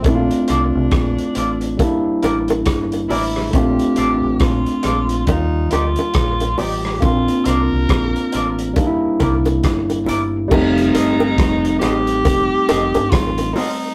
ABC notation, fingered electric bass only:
X:1
M:4/4
L:1/16
Q:"Swing 16ths" 1/4=69
K:Bb
V:1 name="Fingered electric bass" clef=bass
B,,, z C,, C,, B,,, z A,,,2 z2 A,,,2 G,,,2 A,,,2 | B,,, z A,,, A,,, B,,, z B,,,2 E,,2 D,, z B,,,2 A,,,2 | B,,, z C,, C,, B,,, z A,,,2 z2 C,,2 G,,,2 G,,,2 | F,,,2 G,,,2 F,,,2 A,,,2 F,,, z F,,, G,,, A,,,2 z2 |]